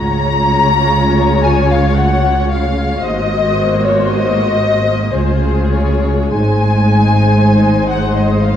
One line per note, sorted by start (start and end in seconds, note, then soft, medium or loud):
0.00 3.00 C#2 medium
0.00 3.00 C#3 medium
0.00 3.00 G#3 medium
0.00 3.00 F4 medium
0.00 3.00 C#5 medium
0.00 1.44 A#5 loud
1.45 1.71 G#5 medium
1.71 1.97 F5 medium
1.97 2.50 F#5 medium
2.51 3.03 F5 medium
3.03 5.10 G#1 medium
3.03 5.10 G#2 medium
3.03 5.10 A#3 medium
3.03 5.10 F#4 medium
3.03 5.10 C5 medium
3.03 3.83 D#5 loud
3.84 4.10 C#5 medium
4.10 5.14 D#5 loud
5.13 6.29 C#2 medium
5.13 6.28 C#3 medium
5.13 8.56 G#3 medium
5.13 6.27 F4 medium
5.13 6.27 G#4 medium
5.13 5.71 C5 medium
5.72 6.31 C#5 medium
6.31 8.56 G#1 medium
6.31 8.56 G#2 medium
6.31 8.56 D#4 medium
6.31 8.56 C5 medium
6.31 7.87 G#5 loud
7.91 8.17 F#5 medium
8.17 8.42 D#5 medium
8.42 8.56 F5 medium